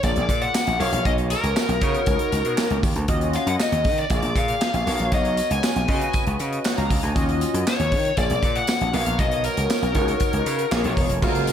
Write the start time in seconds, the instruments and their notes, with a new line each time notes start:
0.03 slap bass A#1, analog polysynth A#3 F4 G#4 D5, lead electric guitar D5, kick, closed hi-hat, tambourine
0.16 slap bass A#1, closed hi-hat
0.29 slap bass A#2, kick, closed hi-hat, tambourine
0.42 lead electric guitar F#5, closed hi-hat
0.54 snare, clap, tambourine
0.67 slap bass A#1, closed hi-hat
0.79 slap bass B1, analog polysynth B3 F#4 A#4 C#5, lead electric guitar F5, open hi-hat, tambourine
0.92 slap bass A#1, closed hi-hat
1.05 slap bass B1, lead electric guitar D#5, kick, closed hi-hat
1.18 closed hi-hat
1.30 lead electric guitar A#4, closed hi-hat, tambourine
1.43 slap bass C#2, closed hi-hat
1.57 snare, clap, tambourine
1.69 slap bass B1, closed hi-hat
1.81 slap bass C#3, analog polysynth B3 D#4 F#4 C#5, kick, closed hi-hat, tambourine
1.94 closed hi-hat
2.06 slap bass C#2, kick, closed hi-hat, tambourine
2.19 closed hi-hat
2.32 slap bass C#2, closed hi-hat, tambourine
2.45 slap bass B2, closed hi-hat
2.57 snare, clap, tambourine
2.70 slap bass C#2, closed hi-hat
2.83 slap bass D#2, kick, open hi-hat, tambourine
2.96 slap bass D2, closed hi-hat
3.08 slap bass D#2, analog polysynth C#4 F4 F#4 D#5, kick, closed hi-hat
3.21 closed hi-hat
3.33 lead electric guitar F5, closed hi-hat, tambourine
3.46 slap bass F#2, lead electric guitar F#5, closed hi-hat
3.60 lead electric guitar D#5, snare, clap, tambourine
3.72 slap bass D#2, closed hi-hat
3.84 slap bass D#3, kick, open hi-hat, tambourine
3.98 lead electric guitar D5, closed hi-hat
4.10 slap bass A#1, analog polysynth A#3 F4 G#4 D5, kick, closed hi-hat, tambourine
4.23 slap bass A#1, closed hi-hat
4.35 slap bass A#2, lead electric guitar F5, kick, closed hi-hat, tambourine
4.48 closed hi-hat
4.61 snare, clap, tambourine
4.74 slap bass A#1, closed hi-hat
4.86 slap bass B1, analog polysynth B3 F#4 A#4 C#5, open hi-hat, tambourine
4.99 slap bass A#1, closed hi-hat
5.12 slap bass B1, lead electric guitar D#5, kick, closed hi-hat, tambourine
5.25 closed hi-hat
5.37 closed hi-hat, tambourine
5.51 slap bass C#2, lead electric guitar G#5, closed hi-hat
5.64 snare, clap, tambourine
5.76 slap bass B1, closed hi-hat
5.88 slap bass C#3, analog polysynth C#4 F4 B4 D#5, kick, open hi-hat, tambourine
5.94 analog polysynth F#4
6.01 closed hi-hat
6.13 kick, closed hi-hat, tambourine
6.27 slap bass C#2, closed hi-hat
6.39 slap bass C#3, closed hi-hat, tambourine
6.53 closed hi-hat
6.64 analog polysynth C#5 F#5, snare, clap, tambourine
6.78 slap bass C#2, analog polysynth F5 A#5, closed hi-hat
6.90 slap bass C#2, kick, open hi-hat, tambourine
7.03 slap bass D2, analog polysynth D#5 G#5, closed hi-hat
7.15 slap bass D#2, analog polysynth C#4 F4 F#4 D#5, kick, closed hi-hat, tambourine
7.29 closed hi-hat
7.41 closed hi-hat, tambourine
7.54 slap bass F#2, closed hi-hat
7.67 lead electric guitar C#5, snare, clap, tambourine
7.79 slap bass D#2, closed hi-hat
7.92 slap bass D#3, kick, open hi-hat, tambourine
8.05 closed hi-hat
8.17 slap bass A#1, analog polysynth A#3 F4 G#4 D5, lead electric guitar D5, kick, closed hi-hat, tambourine
8.30 slap bass A#1, closed hi-hat
8.42 slap bass A#2, kick, closed hi-hat, tambourine
8.56 lead electric guitar F#5, closed hi-hat
8.67 snare, clap, tambourine
8.81 slap bass A#1, closed hi-hat
8.93 slap bass B1, analog polysynth B3 F#4 A#4 B4, lead electric guitar F5, open hi-hat, tambourine
9.00 analog polysynth C#5
9.06 slap bass A#1, closed hi-hat
9.19 slap bass B1, lead electric guitar D#5, kick, closed hi-hat, tambourine
9.32 closed hi-hat
9.44 lead electric guitar A#4, closed hi-hat, tambourine
9.57 slap bass C#2, closed hi-hat
9.70 snare, clap, tambourine
9.82 slap bass B1, closed hi-hat
9.95 slap bass C#2, analog polysynth B3 D#4 F4 C#5, kick, closed hi-hat, tambourine
10.02 analog polysynth F#4
10.08 closed hi-hat
10.20 kick, closed hi-hat, tambourine
10.33 slap bass C#2, closed hi-hat
10.46 slap bass C#3, closed hi-hat, tambourine
10.59 closed hi-hat
10.71 slap bass A#1, analog polysynth A#3 F4 G#4 C#5, snare, clap, tambourine
10.84 slap bass A#1, closed hi-hat
10.97 slap bass E1, kick, open hi-hat, tambourine
11.10 slap bass F1, closed hi-hat
11.22 slap bass F#1, ambient pad A#2 G#3 F5, horn section C#3 A#3 F4, analog polysynth G#3 F4 F#4 A4, kick, crash, tambourine
11.29 analog polysynth A#4
11.35 closed hi-hat
11.47 closed hi-hat, tambourine